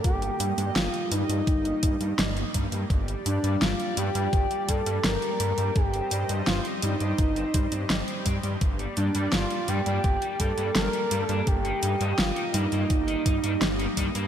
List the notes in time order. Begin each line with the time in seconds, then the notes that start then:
Already playing: G3 A#3 G4
0.04 G1 G4 D#5, kick, closed hi-hat
0.22 D#3, closed hi-hat
0.40 G2 D#4, closed hi-hat
0.58 G2 D#3, closed hi-hat
0.76 G1 F4, snare, closed hi-hat
0.94 D#3, closed hi-hat
1.11 G2 D#3 D#4, closed hi-hat
1.29 G2 A#3, closed hi-hat
1.47 G1, kick, closed hi-hat
1.65 D#3, closed hi-hat
1.83 G2 D#4, kick, closed hi-hat
2.01 G2 D#3, closed hi-hat
2.18 G1, snare, closed hi-hat
2.36 D#3, closed hi-hat
2.54 G2 D#3, kick, closed hi-hat
2.72 G2 A#3, closed hi-hat
2.90 G1 D5, kick, closed hi-hat
3.08 G3, closed hi-hat
3.25 G2 D4 G4, closed hi-hat
3.43 G2 G3, closed hi-hat
3.61 G1 F4, snare, closed hi-hat
3.79 G3, closed hi-hat
3.97 G2 G3 G4, closed hi-hat
4.15 G2 D4, closed hi-hat
4.33 G1, kick, closed hi-hat
4.50 G3, closed hi-hat
4.68 G2 G4 A4, kick, closed hi-hat
4.86 G2 G3, closed hi-hat
5.04 G1 A#4, snare, closed hi-hat
5.22 G3, closed hi-hat
5.40 G2 G3, closed hi-hat
5.58 G2 D4, closed hi-hat
5.76 G1 G4 C5 D#5, kick, closed hi-hat
5.93 C4, closed hi-hat
6.11 G2 C5, closed hi-hat
6.29 G2 C4, closed hi-hat
6.47 G1 F4, snare, closed hi-hat
6.65 C4, closed hi-hat
6.82 G2 C4 D#4, closed hi-hat
7.00 G2 G4, closed hi-hat
7.18 G1, kick, closed hi-hat
7.36 C4, closed hi-hat
7.54 G2 C5, kick, closed hi-hat
7.72 G2 C4, closed hi-hat
7.90 G1, snare, closed hi-hat
8.08 C4, closed hi-hat
8.26 G2 C4, kick, closed hi-hat
8.43 G2 G4, closed hi-hat
8.61 G1 A#3 D5, kick, closed hi-hat
8.79 G3, closed hi-hat
8.97 G2 D4 G4, closed hi-hat
9.15 G2 G3, closed hi-hat
9.32 G1 F4, snare, closed hi-hat
9.50 G3, closed hi-hat
9.68 G2 G3 G4, closed hi-hat
9.86 G2 D4, closed hi-hat
10.04 G1, kick, closed hi-hat
10.22 G3, closed hi-hat
10.40 G2 G4 A4, kick, closed hi-hat
10.57 G2 G3, closed hi-hat
10.75 G1 A#4, snare, closed hi-hat
10.93 G3, closed hi-hat
11.11 G2 G3, closed hi-hat
11.22 A4
11.29 G2 D4, closed hi-hat
11.47 G1 G4 D#5, kick, closed hi-hat
11.65 D#3, closed hi-hat
11.83 G2 D#4, closed hi-hat
12.01 G2 D#3, closed hi-hat
12.18 G1 F4, snare, closed hi-hat
12.36 D#3, closed hi-hat
12.54 G2 D#3 D#4, closed hi-hat
12.72 G2 A#3, closed hi-hat
12.90 G1, kick, closed hi-hat
13.08 D#3, closed hi-hat
13.25 G2 D#4, kick, closed hi-hat
13.43 G2 D#3, closed hi-hat
13.62 G1, snare, closed hi-hat
13.79 D#3, closed hi-hat
13.97 G2 D#3, kick, closed hi-hat
14.15 G2 A#3, closed hi-hat